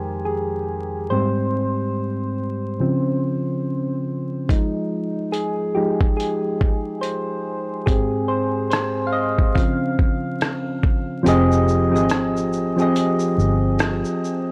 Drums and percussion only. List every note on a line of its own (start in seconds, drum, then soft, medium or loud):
4.49 kick medium
4.49 closed hi-hat medium
5.34 closed hi-hat medium
6.01 kick medium
6.20 closed hi-hat medium
6.61 kick medium
7.03 closed hi-hat medium
7.87 kick medium
7.87 closed hi-hat medium
8.71 cross-stick medium
8.71 closed hi-hat medium
9.39 kick medium
9.56 kick medium
9.56 closed hi-hat medium
9.99 kick medium
10.41 cross-stick loud
10.41 closed hi-hat medium
10.83 kick medium
11.26 closed hi-hat medium
11.26 shaker medium
11.52 shaker soft
11.68 shaker soft
11.96 shaker medium
12.09 cross-stick loud
12.09 closed hi-hat medium
12.09 shaker medium
12.37 shaker soft
12.53 shaker soft
12.79 shaker soft
12.96 closed hi-hat medium
12.96 shaker medium
13.20 shaker medium
13.39 shaker soft
13.79 cross-stick loud
13.79 closed hi-hat medium
13.79 shaker medium
14.05 shaker soft
14.24 shaker soft